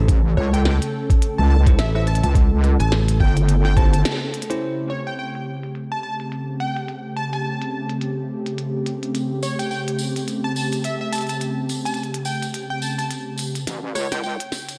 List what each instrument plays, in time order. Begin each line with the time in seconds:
Already playing: analog synth pad C#3 A3 C#4 A4
0.08 wobble bass A1, kick, closed hi-hat
0.37 wobble bass C#2, digital synth lead C#5, cross-stick
0.53 digital synth lead G5, cross-stick, closed hi-hat
0.65 digital synth lead G5, snare
0.82 closed hi-hat
1.10 kick, closed hi-hat
1.22 closed hi-hat
1.38 wobble bass C#2, digital synth lead A5
1.50 digital synth lead A5
1.66 tine electric piano C#4 E4 G4 C5, kick, closed hi-hat
1.78 fingered electric bass A1, digital synth lead E5, snare, closed hi-hat
1.95 tine electric piano C#4 E4 G4 C5, digital synth lead E5, cross-stick
2.07 digital synth lead A5, closed hi-hat
2.15 closed hi-hat
2.23 wobble bass C#2, digital synth lead A5, closed hi-hat
2.35 kick, closed hi-hat
2.64 cross-stick, closed hi-hat
2.80 fingered electric bass A1, digital synth lead A5, cross-stick, closed hi-hat
2.92 snare
3.08 closed hi-hat
3.20 wobble bass G1, digital synth lead G5, kick
3.37 closed hi-hat
3.49 closed hi-hat
3.65 digital synth lead G5, snare
3.77 tine electric piano C#4 E4 G4 C5, digital synth lead A5, kick, closed hi-hat
3.93 digital synth lead A5, closed hi-hat
4.05 snare, closed hi-hat
4.34 closed hi-hat
4.42 closed hi-hat
4.50 tine electric piano C#4 E4 G4 C5, closed hi-hat
4.62 analog synth pad C#3 A3 C4 G4, closed hi-hat
4.90 digital synth lead C#5, closed hi-hat
5.07 digital synth lead G5, closed hi-hat
5.19 digital synth lead G5
5.35 closed hi-hat
5.63 closed hi-hat
5.75 closed hi-hat
5.92 digital synth lead A5
6.03 digital synth lead A5
6.20 closed hi-hat
6.32 closed hi-hat
6.60 digital synth lead G5, closed hi-hat
6.77 closed hi-hat
6.88 closed hi-hat
7.16 digital synth lead A5, closed hi-hat
7.33 digital synth lead A5, closed hi-hat
7.62 closed hi-hat
7.89 closed hi-hat
8.01 closed hi-hat
8.46 closed hi-hat
8.58 closed hi-hat
8.86 closed hi-hat
9.03 closed hi-hat
9.15 closed hi-hat, tambourine
9.43 digital synth lead C#5, closed hi-hat, tambourine
9.59 digital synth lead G5, closed hi-hat, tambourine
9.71 digital synth lead G5, tambourine
9.88 closed hi-hat
9.99 tambourine
10.16 closed hi-hat, tambourine
10.28 closed hi-hat, tambourine
10.44 digital synth lead A5
10.56 digital synth lead A5, tambourine
10.72 closed hi-hat, tambourine
10.84 digital synth lead E5, closed hi-hat, tambourine
11.01 digital synth lead E5
11.13 digital synth lead A5, closed hi-hat, tambourine
11.15 closed hi-hat
11.18 closed hi-hat
11.21 closed hi-hat
11.27 digital synth lead A5, closed hi-hat, tambourine
11.29 closed hi-hat
11.41 closed hi-hat, tambourine
11.69 closed hi-hat, tambourine
11.85 digital synth lead A5, closed hi-hat, tambourine
11.94 closed hi-hat, tambourine
12.03 closed hi-hat
12.14 closed hi-hat
12.25 digital synth lead G5, tambourine
12.42 closed hi-hat, tambourine
12.54 closed hi-hat, tambourine
12.70 digital synth lead G5
12.82 digital synth lead A5, tambourine
12.98 digital synth lead A5, closed hi-hat, tambourine
13.11 closed hi-hat, tambourine
13.38 closed hi-hat, tambourine
13.55 closed hi-hat, tambourine
13.67 wobble bass A1, analog synth pad C#3 A3 C4 G4, snare, closed hi-hat, tambourine
13.95 wobble bass C#2, digital synth lead C#5, cross-stick, closed hi-hat, tambourine
14.12 digital synth lead G5, cross-stick, snare, closed hi-hat, tambourine
14.23 digital synth lead G5, tambourine
14.40 closed hi-hat
14.52 snare, tambourine
14.69 closed hi-hat, tambourine